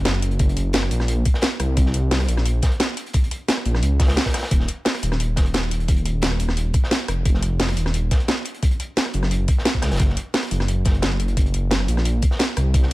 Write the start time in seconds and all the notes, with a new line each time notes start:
Already playing: F#1
0.05 snare, closed hi-hat
0.22 closed hi-hat
0.31 closed hi-hat
0.39 kick, closed hi-hat
0.49 closed hi-hat
0.57 closed hi-hat
0.73 snare, closed hi-hat
0.83 cross-stick
0.91 A#1, closed hi-hat, open hi-hat
1.00 cross-stick, snare
1.08 closed hi-hat
1.25 kick, closed hi-hat
1.34 snare
1.42 snare, closed hi-hat
1.59 C2, cross-stick, closed hi-hat
1.77 kick, closed hi-hat
1.86 snare
1.94 closed hi-hat
2.11 snare, closed hi-hat, open hi-hat
2.20 cross-stick
2.28 A#1, closed hi-hat
2.37 cross-stick, snare
2.46 closed hi-hat
2.62 kick, snare, closed hi-hat
2.71 closed hi-hat
2.80 snare, closed hi-hat
2.97 closed hi-hat
3.06 closed hi-hat
3.13 kick, closed hi-hat
3.24 closed hi-hat
3.31 closed hi-hat
3.48 snare, closed hi-hat
3.57 cross-stick
3.65 A#1, closed hi-hat, open hi-hat
3.75 cross-stick, snare
3.83 C#2, closed hi-hat
4.00 kick, snare, closed hi-hat, open hi-hat
4.08 snare, open hi-hat
4.16 snare, closed hi-hat, open hi-hat
4.26 kick, snare, open hi-hat
4.34 cross-stick, snare, closed hi-hat, open hi-hat
4.38 snare, open hi-hat
4.43 snare, open hi-hat
4.51 D#1, kick, closed hi-hat
4.60 snare
4.68 closed hi-hat
4.85 snare, closed hi-hat, open hi-hat
4.95 cross-stick
5.03 D#1, closed hi-hat
5.12 cross-stick, snare
5.20 closed hi-hat
5.36 D#1, kick, snare, closed hi-hat
5.46 closed hi-hat
5.54 snare, closed hi-hat
5.71 closed hi-hat
5.80 closed hi-hat
5.88 kick, closed hi-hat
5.96 closed hi-hat
6.05 closed hi-hat
6.22 snare, closed hi-hat
6.32 cross-stick
6.40 D#1, closed hi-hat, open hi-hat
6.49 cross-stick, snare
6.57 closed hi-hat
6.74 kick, closed hi-hat
6.84 snare
6.91 snare, closed hi-hat
7.08 F1, cross-stick, closed hi-hat
7.25 kick, closed hi-hat
7.34 snare
7.42 closed hi-hat
7.59 snare, closed hi-hat, open hi-hat
7.69 cross-stick
7.77 D#1, closed hi-hat
7.86 cross-stick, snare
7.94 closed hi-hat
8.11 kick, snare, closed hi-hat
8.20 closed hi-hat
8.28 snare, closed hi-hat
8.45 closed hi-hat
8.54 closed hi-hat
8.63 kick, closed hi-hat
8.71 closed hi-hat
8.80 closed hi-hat
8.97 snare, closed hi-hat
9.06 cross-stick
9.13 F#1, closed hi-hat, open hi-hat
9.23 cross-stick, snare
9.31 closed hi-hat
9.48 kick, closed hi-hat
9.58 snare
9.65 snare, closed hi-hat
9.74 kick
9.82 C#2, cross-stick, snare, closed hi-hat, open hi-hat
9.91 E1, snare, open hi-hat
9.96 snare, closed hi-hat, open hi-hat
10.00 F#1, kick
10.09 snare
10.17 closed hi-hat
10.34 snare, closed hi-hat, open hi-hat
10.43 cross-stick
10.51 F#1, closed hi-hat
10.60 cross-stick, snare
10.68 closed hi-hat
10.85 F#1, kick, snare, closed hi-hat
10.94 closed hi-hat
11.02 snare, closed hi-hat
11.20 closed hi-hat
11.28 closed hi-hat
11.37 kick, closed hi-hat
11.46 closed hi-hat
11.54 closed hi-hat
11.71 snare, closed hi-hat
11.80 cross-stick
11.88 A#1, closed hi-hat, open hi-hat
11.97 cross-stick, snare
12.05 closed hi-hat
12.22 kick, closed hi-hat
12.31 snare
12.39 snare, closed hi-hat
12.56 C2, cross-stick, closed hi-hat
12.74 kick, closed hi-hat
12.82 snare